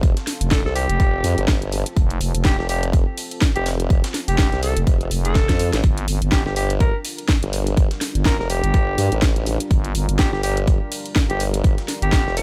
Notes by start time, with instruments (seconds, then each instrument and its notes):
Already playing: ambient pad C4 F4 A4
0.03 wobble bass F1, kick, closed hi-hat
0.17 snare, closed hi-hat
0.27 snare, closed hi-hat, open hi-hat
0.41 fm bass F1, closed hi-hat
0.51 alto saxophone A4, kick, snare, closed hi-hat
0.65 wobble bass C2, alto saxophone A4, snare
0.75 alto saxophone G4, closed hi-hat, open hi-hat
0.89 fm bass F1, closed hi-hat
1.00 wobble bass F1, kick, closed hi-hat
1.24 wobble bass F2, closed hi-hat, open hi-hat
1.38 wobble bass G1, closed hi-hat
1.48 kick, snare, closed hi-hat
1.62 closed hi-hat
1.72 closed hi-hat, open hi-hat
1.86 closed hi-hat
1.97 fm bass F1, kick, closed hi-hat
2.10 closed hi-hat
2.21 fm bass F1, closed hi-hat, open hi-hat
2.35 fm bass F1, closed hi-hat
2.45 alto saxophone G4, kick, snare, closed hi-hat
2.59 wobble bass F1, alto saxophone G4, snare
2.69 alto saxophone G4, closed hi-hat, open hi-hat
2.83 closed hi-hat
2.93 kick, closed hi-hat
3.18 open hi-hat
3.31 closed hi-hat
3.41 kick, snare, closed hi-hat
3.56 wobble bass F1, alto saxophone G4, closed hi-hat
3.66 snare, closed hi-hat, open hi-hat
3.80 closed hi-hat
3.90 wobble bass F1, kick, closed hi-hat
4.04 snare, closed hi-hat
4.14 snare, open hi-hat
4.28 fm bass F1, alto saxophone G4, closed hi-hat
4.38 kick, snare, closed hi-hat
4.52 wobble bass C2, snare, closed hi-hat
4.63 alto saxophone A4, closed hi-hat, open hi-hat
4.76 fm bass F1, closed hi-hat
4.87 wobble bass F1, kick, closed hi-hat
5.01 closed hi-hat
5.11 fm bass F1, open hi-hat
5.25 alto saxophone A4, closed hi-hat
5.35 kick, snare, closed hi-hat
5.49 wobble bass F2, kick, snare, closed hi-hat
5.59 closed hi-hat, open hi-hat
5.73 wobble bass A1, snare, closed hi-hat
5.83 fm bass G1, ambient pad G3 D4 F4 A#4, kick, closed hi-hat
5.98 closed hi-hat
6.08 fm bass G1, closed hi-hat, open hi-hat
6.22 fm bass G1, closed hi-hat
6.32 alto saxophone G4, kick, snare, closed hi-hat
6.46 wobble bass G1, alto saxophone G4, snare
6.56 alto saxophone G4, closed hi-hat, open hi-hat
6.70 closed hi-hat
6.80 alto saxophone A#4, kick, closed hi-hat
7.05 open hi-hat
7.18 closed hi-hat
7.28 kick, snare, closed hi-hat
7.43 wobble bass G1, closed hi-hat
7.53 closed hi-hat, open hi-hat
7.67 closed hi-hat
7.77 wobble bass G1, kick, closed hi-hat
7.91 snare, closed hi-hat
8.01 snare, closed hi-hat, open hi-hat
8.15 fm bass G1, closed hi-hat
8.25 alto saxophone A#4, kick, snare, closed hi-hat
8.39 wobble bass F1, alto saxophone A#4, snare
8.50 alto saxophone G4, closed hi-hat, open hi-hat
8.64 fm bass G1, closed hi-hat
8.74 wobble bass G1, kick, closed hi-hat
8.98 wobble bass G2, closed hi-hat, open hi-hat
9.12 wobble bass A1, closed hi-hat
9.22 kick, snare, closed hi-hat
9.36 closed hi-hat
9.46 closed hi-hat, open hi-hat
9.60 closed hi-hat
9.71 fm bass G1, kick, closed hi-hat
9.85 closed hi-hat
9.95 fm bass G1, closed hi-hat, open hi-hat
10.09 fm bass G1, closed hi-hat
10.19 alto saxophone G4, kick, snare, closed hi-hat
10.33 wobble bass G1, alto saxophone G4, snare
10.43 alto saxophone G4, closed hi-hat, open hi-hat
10.57 closed hi-hat
10.67 kick, closed hi-hat
10.92 open hi-hat
11.06 closed hi-hat
11.16 kick, snare, closed hi-hat
11.30 wobble bass G1, alto saxophone G4, closed hi-hat
11.40 closed hi-hat, open hi-hat
11.54 closed hi-hat
11.64 wobble bass G1, kick, closed hi-hat
11.78 snare, closed hi-hat
11.88 snare, closed hi-hat, open hi-hat
12.02 fm bass G1, alto saxophone G4, closed hi-hat
12.12 kick, snare, closed hi-hat
12.26 wobble bass F1, snare
12.37 alto saxophone A#4, closed hi-hat, open hi-hat